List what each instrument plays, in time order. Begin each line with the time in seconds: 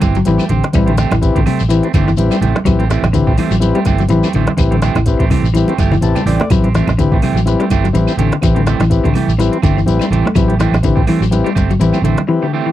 Already playing: clean electric guitar G3
0.01 fingered electric bass G1, clean electric guitar E3 C4 G4, muted clean electric guitar stroke, kick, snare, closed hi-hat, high conga, claves, shekere
0.15 clean electric guitar F#3, closed hi-hat, shekere
0.25 fingered electric bass A1, clean electric guitar E3, transistor combo organ C4 E4 G4 B4, closed hi-hat, high conga, shekere
0.38 clean electric guitar A3 G4, high conga, claves, shekere
0.49 fingered electric bass A1, clean electric guitar D3 C4 G4, muted clean electric guitar stroke, closed hi-hat, low conga, shekere
0.64 snare, closed hi-hat
0.73 fingered electric bass A1, clean electric guitar G3, transistor combo organ C4 E4 G4 B4, kick, closed hi-hat, low conga, claves, shekere
0.86 clean electric guitar D3 A3 C4 G4, closed hi-hat, high conga
0.98 clean electric guitar A3 C4 G4, snare, closed hi-hat, shekere
1.11 fingered electric bass A1, clean electric guitar E3, snare, closed hi-hat, high conga, low conga, claves, shekere
1.21 transistor combo organ C4 E4 G4 B4, kick, closed hi-hat, shekere
1.35 fingered electric bass A1, clean electric guitar D3 A3 C4 G4, kick, closed hi-hat
1.46 clean electric guitar C3 A3 C4 G4, open hi-hat, high conga, claves, shekere
1.59 fingered electric bass A1, shekere
1.68 clean electric guitar E3, transistor combo organ C4 E4 G4 B4, closed hi-hat, shekere
1.83 clean electric guitar A3 C4, muted clean electric guitar stroke, closed hi-hat
1.94 fingered electric bass G1, clean electric guitar D3 E3 A3 C4 G4, kick, closed hi-hat, high conga, claves, shekere
2.08 clean electric guitar E3, snare, shekere
2.17 fingered electric bass A1, transistor combo organ C4 E4 G4 B4, closed hi-hat, high conga, shekere
2.31 clean electric guitar G3 A3 C4 G4, closed hi-hat, claves, shekere
2.41 fingered electric bass A1, clean electric guitar E3 A3 C4 G4, closed hi-hat, low conga, shekere
2.55 muted clean electric guitar stroke, snare, high conga
2.65 fingered electric bass A1, clean electric guitar F#3, transistor combo organ C4 E4 G4 B4, kick, closed hi-hat, low conga, claves, shekere
2.79 clean electric guitar A3 C4 G4, closed hi-hat
2.90 clean electric guitar E3 A3 C4 G4, snare, closed hi-hat, shekere
3.03 fingered electric bass A1, snare, high conga, low conga, claves, shekere
3.13 clean electric guitar D3, transistor combo organ C4 E4 G4 B4, kick, closed hi-hat, shekere
3.27 fingered electric bass A1, clean electric guitar A3 C4 G4, kick
3.37 clean electric guitar E3 A3 C4 G4, open hi-hat, high conga, claves, shekere
3.51 fingered electric bass A1, clean electric guitar F#3, shekere
3.60 transistor combo organ C4 E4 G4 B4, closed hi-hat, high conga, shekere
3.75 clean electric guitar G3 A3 C4 G4, closed hi-hat
3.85 fingered electric bass G1, clean electric guitar E3 A3 C4 G4, kick, snare, closed hi-hat, high conga, claves, shekere
3.98 clean electric guitar F#3, closed hi-hat, shekere
4.08 fingered electric bass A1, clean electric guitar E3, transistor combo organ C4 E4 G4 B4, closed hi-hat, high conga, shekere
4.23 clean electric guitar A3 C4 G4, high conga, claves, shekere
4.33 fingered electric bass A1, clean electric guitar D3 E3 A3 C4 G4, closed hi-hat, low conga, shekere
4.47 snare, closed hi-hat, high conga
4.57 fingered electric bass A1, transistor combo organ C4 E4 G4 B4, muted clean electric guitar stroke, kick, closed hi-hat, low conga, claves, shekere
4.71 clean electric guitar D3 A3 C4 G4, closed hi-hat, high conga
4.82 clean electric guitar E3 A3 C4 G4, snare, closed hi-hat, shekere
4.95 fingered electric bass A1, clean electric guitar E3, snare, closed hi-hat, high conga, low conga, claves, shekere
5.06 transistor combo organ C4 E4 G4 B4, kick, closed hi-hat, shekere
5.19 fingered electric bass A1, clean electric guitar A3 C4 G4, muted clean electric guitar stroke, kick, closed hi-hat
5.30 clean electric guitar C3 E3 A3 C4 G4, kick, open hi-hat, high conga, claves, shekere
5.42 fingered electric bass A1, shekere
5.54 clean electric guitar E3, transistor combo organ C4 E4 G4 B4, closed hi-hat, high conga, shekere
5.68 clean electric guitar A3 C4 G4, closed hi-hat, high conga
5.78 fingered electric bass G1, clean electric guitar E3 A3 G4, kick, snare, closed hi-hat, high conga, claves, shekere
5.92 clean electric guitar E3, low conga, shekere
6.01 fingered electric bass A1, transistor combo organ C4 E4 G4 B4 A5, closed hi-hat, low conga, shekere
6.15 clean electric guitar G3 A3 C4 G4, closed hi-hat, low conga, claves, shekere
6.26 fingered electric bass A1, clean electric guitar E3 A3 C4 G4, transistor combo organ D5, open hi-hat, low conga, shekere
6.40 clean electric guitar A3, snare, low conga
6.50 fingered electric bass A1, clean electric guitar F#3, transistor combo organ C4 E4 G4 B4, kick, closed hi-hat, low conga, claves, shekere
6.64 clean electric guitar C4 G4, muted clean electric guitar stroke, closed hi-hat, high conga
6.74 clean electric guitar E3 A3 C4 G4, snare, closed hi-hat, shekere
6.87 fingered electric bass A1, snare, high conga, low conga, claves, shekere
6.98 clean electric guitar D3, transistor combo organ C4 E4 G4 B4, kick, closed hi-hat, shekere
7.12 fingered electric bass A1, clean electric guitar A3 C4 G4, kick
7.22 clean electric guitar C3 E3 A3 C4 G4, open hi-hat, high conga, claves, shekere
7.34 fingered electric bass A1, clean electric guitar F#3, shekere
7.46 transistor combo organ C4 E4 G4 B4, snare, closed hi-hat, high conga, shekere
7.60 clean electric guitar G3 A3 C4 G4, snare, closed hi-hat
7.70 fingered electric bass G1, clean electric guitar E3 A3 C4 G4, kick, closed hi-hat, high conga, claves, shekere
7.84 clean electric guitar F#3, snare, closed hi-hat, shekere
7.93 fingered electric bass A1, clean electric guitar E3, transistor combo organ C4 E4 G4 B4, closed hi-hat, high conga, shekere
8.07 clean electric guitar A3 C4 G4, claves, shekere
8.17 fingered electric bass A1, clean electric guitar D3 E3 A3 C4 G4, closed hi-hat, low conga, shekere
8.32 snare, closed hi-hat
8.42 fingered electric bass A1, clean electric guitar E3, transistor combo organ C4 E4 G4 B4, kick, closed hi-hat, low conga, claves, shekere
8.55 clean electric guitar D3 A3 C4 G4, closed hi-hat, high conga
8.66 clean electric guitar E3 A3 C4 G4, snare, closed hi-hat, shekere
8.80 fingered electric bass A1, clean electric guitar E3, snare, closed hi-hat, high conga, claves, shekere
8.90 transistor combo organ C4 E4 G4 B4, kick, closed hi-hat, shekere
9.04 fingered electric bass A1, clean electric guitar D3 A3 C4 G4, kick, closed hi-hat
9.14 clean electric guitar C3 E3 A3 G4, muted clean electric guitar stroke, open hi-hat, high conga, claves, shekere
9.28 fingered electric bass A1, shekere
9.38 clean electric guitar E3, transistor combo organ C4 E4 G4 B4, snare, closed hi-hat, high conga, shekere
9.52 clean electric guitar C4, closed hi-hat
9.62 fingered electric bass G1, clean electric guitar D3 E3 A3 C4 G4, kick, closed hi-hat, high conga, claves, shekere
9.77 clean electric guitar E3, shekere
9.86 fingered electric bass A1, transistor combo organ C4 E4 G4 B4, closed hi-hat, high conga, shekere
9.99 clean electric guitar G3 A3 C4, closed hi-hat, high conga, claves, shekere
10.10 fingered electric bass A1, clean electric guitar E3 A3 C4 G4, closed hi-hat, low conga, shekere
10.26 clean electric guitar A3, snare, high conga
10.35 fingered electric bass A1, clean electric guitar F#3, transistor combo organ C4 E4 G4 B4, kick, closed hi-hat, low conga, claves, shekere
10.48 clean electric guitar A3 G4, closed hi-hat, high conga
10.59 clean electric guitar E3 A3 C4 G4, snare, closed hi-hat, shekere
10.72 fingered electric bass A1, snare, high conga, low conga, claves, shekere
10.83 clean electric guitar D3, transistor combo organ C4 E4 G4 B4, kick, closed hi-hat, shekere
10.96 fingered electric bass A1, clean electric guitar A3 C4 G4, kick
11.07 clean electric guitar E3 A3 C4 G4, open hi-hat, high conga, claves, shekere
11.21 fingered electric bass A1, clean electric guitar F#3, shekere
11.31 transistor combo organ C4 E4 G4 B4, snare, closed hi-hat, high conga, shekere
11.44 clean electric guitar G3 A3 C4 G4, closed hi-hat
11.55 fingered electric bass G1, clean electric guitar A3 C4 G4, kick, snare, closed hi-hat, high conga, claves, shekere
11.70 clean electric guitar F#3, closed hi-hat, shekere
11.79 fingered electric bass A1, clean electric guitar E3, transistor combo organ C4 E4 G4 B4, closed hi-hat, high conga, shekere
11.93 clean electric guitar A3 C4 G4, high conga, claves, shekere
12.02 fingered electric bass A1, clean electric guitar D3 E3 A3 C4, muted clean electric guitar stroke, closed hi-hat, low conga, shekere
12.17 snare, closed hi-hat, high conga
12.28 clean electric guitar E3, transistor combo organ C4 E4 G4 B4
12.42 clean electric guitar D3 A3 G4
12.53 clean electric guitar E3 A3 C4 G4
12.66 clean electric guitar E3